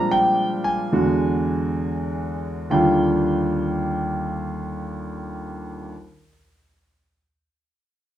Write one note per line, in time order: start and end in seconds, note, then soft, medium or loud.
0.00 0.90 A#2 medium
0.00 0.91 F3 soft
0.00 0.95 G3 medium
0.00 0.92 G#3 soft
0.00 0.93 C4 soft
0.00 0.94 D4 soft
0.00 0.14 A#5 medium
0.11 0.68 G5 medium
0.64 2.37 G#5 medium
0.92 2.72 E2 medium
0.92 2.70 D3 soft
0.92 2.72 G#3 soft
0.92 2.73 F#4 medium
2.70 5.90 D#2 medium
2.70 5.91 D3 medium
2.70 5.92 G3 medium
2.70 5.93 F4 medium
2.70 5.87 G5 medium